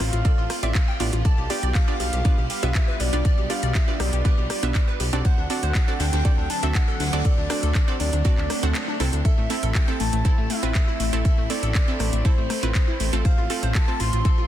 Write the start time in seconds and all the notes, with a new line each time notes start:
Already playing: A3 C4 F4
0.00 A1 F5, cross-stick, open hi-hat, ride
0.13 A1 F4, closed hi-hat
0.25 C4 F4 A4 D5, kick, closed hi-hat, ride
0.38 A1 F4, ride
0.50 F4, cross-stick, open hi-hat, ride
0.63 A1 C4 F4 D5 E5, closed hi-hat
0.75 F4, kick, snare, clap, closed hi-hat, ride
0.88 G5
1.00 A1 B3 D4 F4 G4 D5, open hi-hat, ride
1.13 A1 F4, closed hi-hat
1.24 G3 B3 D5 A5, kick, closed hi-hat, ride
1.38 B1 G4, ride
1.50 B3 D4 F4 G4 D5 G5, snare, open hi-hat, ride
1.63 B1 D5, closed hi-hat, ride
1.75 G4 F5, kick, snare, clap, closed hi-hat, open hi-hat
1.88 B3 D4 F4 G4 D5
2.00 B1 G4 F5, open hi-hat, ride
2.13 B1 G4, closed hi-hat
2.25 B3 D4 F4 G4 B4 D5, kick, closed hi-hat, ride
2.38 B1 G4
2.50 G4 F5, open hi-hat, ride
2.63 B1 B3 D4 F4 G4 B4 E5, closed hi-hat
2.75 G4 E5, kick, snare, clap, closed hi-hat, ride
2.88 B4, ride
3.00 B1 G4 D5, open hi-hat, ride
3.13 B1 B3 D4 F4 G4 D5, closed hi-hat
3.25 D5, kick, closed hi-hat, ride
3.38 B1 G4
3.50 B3 D4 F4 G4 D5 F5, open hi-hat, ride
3.63 B1 D5, closed hi-hat
3.75 G4 E5, kick, snare, clap, closed hi-hat, ride
3.88 B3 D4 F4 G4 D5, snare
4.00 B1 G4 D5, cross-stick, open hi-hat, ride
4.13 B1 G4, closed hi-hat
4.25 B3 D4 F4 G4 B4 D5, kick, closed hi-hat, ride
4.38 B1 G4, ride
4.50 G4, cross-stick, open hi-hat, ride
4.63 B1 B3 D4 F4 G4 B4 E5, closed hi-hat
4.74 G4, kick, snare, clap, closed hi-hat, ride
4.88 B4
5.00 B1 G4, open hi-hat, ride
5.13 B1 C4 D4 F#4 G4 A4 D5, closed hi-hat
5.25 D3 F#3 A3 C4 C5 F#5, kick, closed hi-hat, ride
5.38 D2 D4, ride
5.50 C4 D4 F#4 A4 D5 F#5, snare, open hi-hat, ride
5.63 D2 C5, closed hi-hat, ride
5.75 D4, kick, snare, clap, closed hi-hat, open hi-hat
5.88 C4 D4 F#4 A4 D5
5.99 D2 D4 G5, snare, open hi-hat
6.13 D2 D4, snare, closed hi-hat, open hi-hat
6.25 C4 D4 F#4 A4 D5, kick, closed hi-hat, ride
6.38 D2 D4
6.50 D4 A5, open hi-hat, ride
6.63 D2 C4 D4 F#4 A4 E5, closed hi-hat
6.75 D4 F#5, kick, snare, clap, closed hi-hat, ride
6.88 A4, ride
7.00 D2 D4, snare, open hi-hat
7.06 snare, open hi-hat
7.13 D2 C4 D4 F#4 A4 D5, snare, closed hi-hat, open hi-hat
7.19 snare, open hi-hat
7.25 A4 D5, kick, closed hi-hat, ride
7.38 D2 D4
7.50 C4 D4 F#4 A4 D5, cross-stick, open hi-hat, ride
7.63 D2 A4, closed hi-hat
7.75 D4, kick, snare, clap, closed hi-hat, ride
7.88 C4 D4 F#4 A4 D5, snare
8.00 D2 D4 D5, open hi-hat, ride
8.13 D2 D4, closed hi-hat
8.24 C4 D4 F#4 A4 D5, kick, closed hi-hat, ride, swell
8.38 D2 D4, clap, ride
8.50 D4, cross-stick, open hi-hat, ride
8.63 D2 C4 D4 F#4 A4 F#5, closed hi-hat
8.75 D4, snare, clap, closed hi-hat, ride
8.88 D4
9.00 C2 C4 D4 E4 A4, open hi-hat, ride
9.13 D2 D4, closed hi-hat
9.25 E4 A4 E5, kick, closed hi-hat, ride
9.37 A1 A3, ride
9.50 A3 C4 E4 A4, snare, open hi-hat, ride
9.63 A1 A4, closed hi-hat, ride
9.75 A3 G5, kick, snare, clap, closed hi-hat, open hi-hat
9.88 C4 E4 A4
10.00 A1 A3 A5, open hi-hat, ride
10.13 A1 A3, closed hi-hat
10.25 C4 E4 A4 A5, kick, closed hi-hat, ride
10.38 A1 A3
10.50 A3 E5, open hi-hat, ride
10.63 A1 C4 E4 F4 B4, closed hi-hat
10.75 A3, kick, snare, clap, closed hi-hat, ride
10.88 E4, ride
10.99 A1 A3, open hi-hat, ride
11.13 A1 A3 C4 E4 A4, closed hi-hat
11.25 A4 E5, kick, closed hi-hat, ride
11.38 A1 A3
11.50 A3 C4 E4 A4 D5, open hi-hat, ride
11.63 A1 A4, closed hi-hat
11.75 A3, kick, snare, clap, closed hi-hat, ride
11.88 C4 E4 A4, snare
11.99 A1 A3, cross-stick, open hi-hat, ride
12.13 A1 A3, closed hi-hat
12.25 C4 E4 A4 C5, kick, closed hi-hat, ride
12.38 A1 A3, ride
12.50 A3, cross-stick, open hi-hat, ride
12.63 A1 C4 E4 F4 B4, closed hi-hat
12.74 A3 C5, kick, snare, clap, closed hi-hat, ride
12.88 E4
13.00 A1 A3, open hi-hat, ride
13.13 A1 A3 C4 F4 A4, closed hi-hat
13.25 F4 C5 F5, kick, closed hi-hat, ride
13.38 A1 F4, ride
13.50 C4 F4 A4, snare, open hi-hat, ride
13.63 A1 C5, closed hi-hat, ride
13.75 F4 A5, kick, snare, clap, closed hi-hat, open hi-hat
13.88 C4 F4 A4
14.00 A1 F4 C6, open hi-hat, ride
14.13 A1 F4, closed hi-hat
14.25 C4 F4 A4 C6, kick, closed hi-hat, ride
14.38 A1 F4